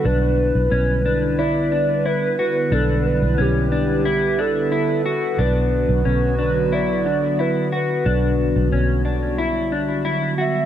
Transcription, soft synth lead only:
\new Staff \with { instrumentName = "Soft synth lead" } { \time 4/4 \key e \dorian \tempo 4 = 90 b'4. b'8 d''4 b'8 b'8 | a'8 b'8 g'4. a'4. | b'4. b'8 d''4 b'8 b'8~ | b'4. r2 e''8 | }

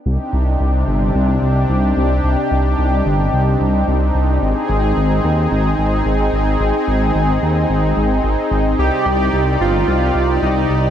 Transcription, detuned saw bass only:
\new Staff \with { instrumentName = "Detuned saw bass" } { \clef bass \time 4/4 \key c \minor \tempo 4 = 110 c,8 c,8 c,8 g,,8 c,8 c,8 c,8 c,8 | c,8 c,8 c,8 g,,8 c,8 c,8 c,8 c,8 | aes,,8 aes,,8 aes,,8 ees,8 aes,,8 aes,,8 aes,,8 aes,,8 | aes,,8 aes,,8 aes,,8 ees,8 aes,,8 aes,,8 aes,,8 aes,,8 |
c,8 c,8 c,8 g,,8 c,8 c,8 c,8 c,8 | }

